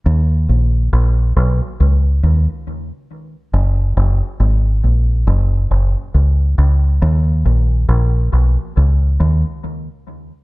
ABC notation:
X:1
M:4/4
L:1/16
Q:"Swing 16ths" 1/4=69
K:Ebm
V:1 name="Fingered electric bass" clef=bass
E,,2 B,,,2 B,,,2 C,, z D,,2 E,, z4 z | G,,,2 G,,, z A,,,2 B,,,2 G,,,2 G,,, z D,,2 D,,2 | E,,2 B,,,2 B,,,2 C,, z D,,2 E,, z4 z |]